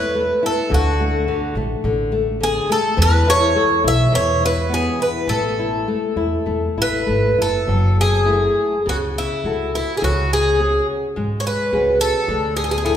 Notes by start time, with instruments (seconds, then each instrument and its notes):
Already playing: upright bass E2, nylon-string guitar E4, twelve-string acoustic guitar B4
0.15 nylon-string guitar A3
0.43 nylon-string guitar E4, twelve-string acoustic guitar A4
0.70 upright bass D2, nylon-string guitar D3
0.74 twelve-string acoustic guitar F#4
1.00 nylon-string guitar A3
1.28 nylon-string guitar D3
1.55 upright bass A1, nylon-string guitar A3
1.84 upright bass A1, nylon-string guitar D3
2.12 nylon-string guitar A3
2.41 nylon-string guitar D3, twelve-string acoustic guitar G#4
2.70 nylon-string guitar A3, twelve-string acoustic guitar A4
2.97 upright bass E2, nylon-string guitar E3
3.02 twelve-string acoustic guitar B4
3.27 nylon-string guitar E4, twelve-string acoustic guitar C#5
3.56 nylon-string guitar A4
3.84 upright bass B1, nylon-string guitar E4
3.88 twelve-string acoustic guitar E5
4.12 upright bass E2, nylon-string guitar E3, twelve-string acoustic guitar C#5
4.41 nylon-string guitar E4
4.46 twelve-string acoustic guitar B4
4.69 nylon-string guitar B3
4.74 twelve-string acoustic guitar G#4
4.99 nylon-string guitar E4, twelve-string acoustic guitar B4
5.27 upright bass A1, nylon-string guitar A3, twelve-string acoustic guitar A4
5.59 nylon-string guitar E4
5.88 nylon-string guitar A3
6.16 upright bass E2, nylon-string guitar E4
6.46 upright bass E2, nylon-string guitar A3
6.77 upright bass A1, nylon-string guitar E4
6.82 twelve-string acoustic guitar B4
7.06 upright bass G#1, nylon-string guitar A3
7.38 upright bass F#1, nylon-string guitar E4, twelve-string acoustic guitar A4
7.67 upright bass F#1, nylon-string guitar F#3
8.01 twelve-string acoustic guitar G#4
8.26 nylon-string guitar A3 E4 F#4
8.86 upright bass C#2, nylon-string guitar C#3, twelve-string acoustic guitar F#4
9.18 twelve-string acoustic guitar E4
9.44 upright bass C#2, nylon-string guitar E4 F#4 A4
9.75 twelve-string acoustic guitar E4
9.97 twelve-string acoustic guitar G#4
10.02 upright bass C#2, nylon-string guitar C#3, twelve-string acoustic guitar F#4
10.33 twelve-string acoustic guitar G#4
10.60 nylon-string guitar C#4 F#4 G#4
11.16 upright bass G#1, nylon-string guitar G#3
11.40 twelve-string acoustic guitar C#5
11.47 twelve-string acoustic guitar B4
11.72 upright bass C#2, nylon-string guitar C#4 F#4 G#4
12.01 twelve-string acoustic guitar A4
12.28 upright bass D2, nylon-string guitar D3
12.57 twelve-string acoustic guitar G#4
12.64 twelve-string acoustic guitar G#4
12.71 twelve-string acoustic guitar G#4
12.78 twelve-string acoustic guitar G#4
12.84 nylon-string guitar D4 E4 A4, twelve-string acoustic guitar G#4